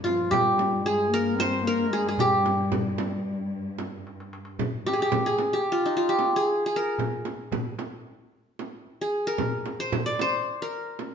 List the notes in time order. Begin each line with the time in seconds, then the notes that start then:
Already playing: G2
0.04 F3 F4, frame drum
0.31 G3 G4, darbuka dum, frame drum
0.58 darbuka tek, frame drum
0.84 G#3 G#4
1.10 A#3 A#4
1.35 C4, darbuka tek
1.40 C5, frame drum
1.63 A#3
1.67 A#4
1.90 G#3 G#4
2.09 G#4
2.18 G3 G4, darbuka dum, frame drum
2.45 darbuka tek, frame drum
2.72 frame drum, darbuka dum
2.98 darbuka tek, frame drum
3.53 darbuka ka
3.79 darbuka tek, frame drum
4.07 darbuka tek
4.20 darbuka ka
4.33 darbuka tek
4.45 darbuka ka
4.59 darbuka dum, frame drum
4.73 darbuka ka
4.86 G4, darbuka tek, frame drum
4.93 G#4
5.02 G4
5.12 frame drum, darbuka dum
5.26 G#4
5.39 darbuka tek, frame drum
5.53 G4
5.72 F4
5.86 D#4
5.97 F4
6.09 G4
6.19 darbuka tek, frame drum
6.36 G#4
6.46 darbuka ka
6.66 G#4
6.76 A#4
6.98 darbuka dum, frame drum
7.25 darbuka tek, frame drum
7.52 darbuka dum, frame drum
7.79 darbuka tek, frame drum
8.59 darbuka tek, frame drum
8.86 darbuka ka
9.01 G#4
9.27 A#4
9.38 frame drum, darbuka dum
9.53 darbuka ka
9.66 darbuka tek, frame drum
9.80 C5
9.92 darbuka dum, frame drum
10.06 D5
10.19 C5, darbuka tek, frame drum
10.62 A#4
10.99 darbuka tek, frame drum